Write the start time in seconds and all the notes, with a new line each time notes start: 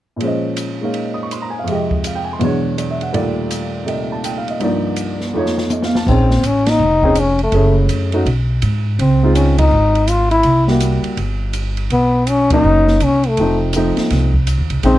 0.16 A#2 F3 G#3
0.20 C#4, ride
0.25 C5 D#5
0.57 hi-hat pedal, ride
0.81 G#3 A#3 D#4 C#5 F5
0.94 ride
1.14 D#6
1.23 C#6
1.31 C6, hi-hat pedal, ride
1.42 A#5
1.50 G#5
1.59 F5
1.64 F2 C3, ride
1.69 G#3 G4
1.75 D#5
1.91 kick
2.04 F5, hi-hat pedal, ride
2.15 G5
2.24 G#5
2.33 C6
2.40 E2 B2 F#3 G#3, ride
2.44 D4 C#5
2.78 D5, hi-hat pedal, ride
2.90 E5
3.01 F#5, ride
3.13 D#2 A#2 G3 A3 F4 D5, ride
3.51 hi-hat pedal, ride
3.85 C3 A3 G4 D#5, ride
4.12 A5
4.24 G5, hi-hat pedal, ride
4.37 F5
4.48 D#5, ride
4.59 C2 G2 F3 A#3, ride
4.64 D#4 D5
4.96 hi-hat pedal, ride
5.20 snare
5.34 F2 F3 A3 D#4
5.38 C#5
5.46 snare
5.58 snare
5.70 D#5, hi-hat pedal, high tom
5.82 F5, snare
5.95 A5, snare
6.06 A#1 C4 C#4 D#4 G#4, kick, crash
6.31 snare
6.43 A1 C#4, hi-hat pedal, ride
6.66 D#4, snare, ride
6.79 F1
7.03 C4 C#4 D#4 G#4, kick
7.15 hi-hat pedal, ride
7.20 C#4
7.39 ride
7.44 A3
7.52 F#1 A3 C#4 E4 G#4, ride
7.88 F#2, hi-hat pedal, ride
8.12 A3 C#4 D#4 F#4, ride
8.26 B1, ride
8.62 G#2, hi-hat pedal, ride
8.99 C#2 C4, ride
9.23 G#3 C4 D#4 F4
9.35 C#4, hi-hat pedal, ride
9.58 D#4, kick, ride
9.71 G#1
9.95 ride
10.08 F4, hi-hat pedal, ride
10.31 E4, ride
10.43 C2, ride
10.67 G3 A#3 E4 F#4, snare
10.80 hi-hat pedal, ride
11.04 muted upright bass stroke, ride
11.17 G1, ride
11.53 hi-hat pedal, ride
11.77 ride
11.90 B1 B3, ride
12.27 C#4, hi-hat pedal, ride
12.50 F#3 A#3 C#4 D#4, kick, ride
12.64 F#1
12.88 snare
13.00 C2, hi-hat pedal, ride
13.04 C#4
13.23 ride
13.28 A3
13.37 F1 F3 A3 C4 D#4, ride
13.73 F3 A3 C4, hi-hat pedal, ride
13.77 D#4
13.97 muted upright bass stroke, snare, ride
14.10 C2, snare, ride
14.34 kick
14.47 hi-hat pedal, ride
14.58 D#2
14.70 C2, ride
14.83 A#1 C#3 G#3 C4 D#4, ride